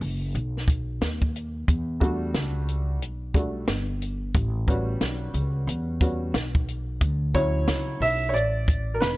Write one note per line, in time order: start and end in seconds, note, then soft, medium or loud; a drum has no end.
0.01 0.33 F#1 medium
0.01 open hi-hat soft
0.35 0.98 B1 loud
0.35 closed hi-hat medium
0.57 snare soft
0.68 kick medium
0.68 closed hi-hat medium
1.01 1.65 D#2 medium
1.01 snare loud
1.01 closed hi-hat medium
1.22 kick medium
1.36 closed hi-hat medium
1.68 2.31 E2 loud
1.68 kick medium
1.68 closed hi-hat medium
2.00 2.97 G3 medium
2.00 2.97 A3 soft
2.00 2.97 D4 medium
2.00 2.97 F#4 medium
2.00 kick medium
2.00 closed hi-hat medium
2.34 3.01 C#2 medium
2.34 snare medium
2.34 closed hi-hat medium
2.69 closed hi-hat medium
3.01 3.65 B1 medium
3.01 closed hi-hat medium
3.34 3.64 G3 soft
3.34 3.65 A3 soft
3.34 3.65 D4 soft
3.34 3.65 F#4 soft
3.34 kick medium
3.34 closed hi-hat medium
3.68 4.31 G1 medium
3.68 snare loud
3.68 closed hi-hat medium
4.02 closed hi-hat medium
4.35 4.98 A1 loud
4.35 kick loud
4.35 closed hi-hat medium
4.68 5.99 G3 medium
4.68 6.00 B3 soft
4.68 6.00 C#4 soft
4.68 6.00 F#4 medium
4.68 kick medium
4.68 closed hi-hat medium
5.01 5.33 B1 medium
5.01 snare medium
5.01 closed hi-hat medium
5.34 5.66 C#2 medium
5.34 closed hi-hat medium
5.67 6.31 E2 loud
5.67 closed hi-hat medium
6.01 6.31 G3 soft
6.01 6.31 B3 soft
6.01 6.31 C#4 soft
6.01 6.31 F#4 soft
6.01 kick medium
6.01 closed hi-hat medium
6.34 6.98 B1 medium
6.34 snare loud
6.34 closed hi-hat medium
6.55 kick medium
6.68 closed hi-hat medium
7.01 7.65 D2 loud
7.01 kick loud
7.01 closed hi-hat medium
7.34 8.30 F#3 medium
7.34 8.31 C#4 soft
7.34 8.31 E4 medium
7.34 8.03 C#5 loud
7.34 kick medium
7.34 closed hi-hat medium
7.68 7.99 C#2 medium
7.68 snare loud
7.68 closed hi-hat medium
8.00 8.35 B1 medium
8.00 8.28 E5 loud
8.00 open hi-hat soft
8.29 8.34 C#5 medium
8.34 8.98 A1 medium
8.34 8.97 D5 loud
8.34 closed hi-hat medium
8.68 kick loud
8.68 closed hi-hat medium
8.94 9.00 A#4 medium
9.00 9.17 E1 medium
9.00 9.17 B4 medium
9.00 snare medium
9.00 closed hi-hat medium